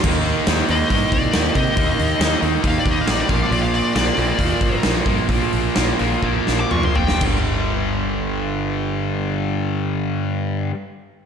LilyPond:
<<
  \new Staff \with { instrumentName = "Lead electric guitar" } { \time 4/4 \key g \minor \tempo 4 = 131 r4. ees''8 ees''8 d''4 ees''8~ | ees''4. r8 f''16 d''16 ees''16 f''16 d''16 d''16 f''16 d''16 | d''16 f''16 d''16 d''16 d''2 r4 | r2 r8. d'''16 cis'''16 c'''16 g''8 |
r1 | r1 | }
  \new Staff \with { instrumentName = "Distorted electric guitar" } { \clef bass \time 4/4 \key g \minor <ees bes ees'>4 <ees bes ees'>8 <ees bes ees'>8 <ees bes ees'>4 <ees bes ees'>8 <ees bes ees'>8 | <ees bes ees'>4 <ees bes ees'>8 <ees bes ees'>8 <ees bes ees'>4 <ees bes ees'>8 <bes, f bes>8 | <bes, f bes>4 <bes, f bes>8 <bes, f bes>8 <bes, f bes>4 <bes, f bes>8 <bes, f bes>8 | <bes, f bes>4 <bes, f bes>8 <bes, f bes>8 <bes, f bes>4 <bes, f bes>8 <bes, f bes>8 |
<g, d g>1~ | <g, d g>1 | }
  \new Staff \with { instrumentName = "Overdriven electric guitar" } { \clef bass \time 4/4 \key g \minor <ees bes ees'>4 <ees bes ees'>8 <ees bes ees'>8 <ees bes ees'>4 <ees bes ees'>8 <ees bes ees'>8 | <ees bes ees'>4 <ees bes ees'>8 <ees bes ees'>8 <ees bes ees'>4 <ees bes ees'>8 <bes, f bes>8 | <bes, f bes>4 <bes, f bes>8 <bes, f bes>8 <bes, f bes>4 <bes, f bes>8 <bes, f bes>8 | <bes, f bes>4 <bes, f bes>8 <bes, f bes>8 <bes, f bes>4 <bes, f bes>8 <bes, f bes>8 |
<g, d g>1~ | <g, d g>1 | }
  \new Staff \with { instrumentName = "Fretless electric bass" } { \clef bass \time 4/4 \key g \minor ees,4 ees,8 ees,8 g,8 c,8 ees,8 c8 | ees,8 ees,8 ees,8 ees,8 ees,8 ees,8 a,,8 bes,,8 | bes,,4 bes,,8 bes,,8 ees,8 g,,8 bes,,8 g,8 | bes,,8 bes,,8 bes,,8 bes,,8 bes,,8 bes,,8 f,8 f,,8 |
g,,1~ | g,,1 | }
  \new DrumStaff \with { instrumentName = "Drums" } \drummode { \time 4/4 <cymc bd>8 hho8 <hho sn>8 hho8 <hho bd>8 <hho bd>8 <hho sn>8 <hho bd>8 | <hho bd>8 hho8 <hho sn>8 hho8 <hho bd>8 <hho bd>8 <hho sn>8 <hho bd>8 | hho8 hho8 <hho sn>8 hho8 <hho bd>8 <hho bd>8 <hho sn>8 <hho bd>8 | <hho bd>8 hho8 <hho sn>8 hho8 bd8 sn8 toml16 toml16 tomfh16 sn16 |
<cymc bd>4 r4 r4 r4 | r4 r4 r4 r4 | }
>>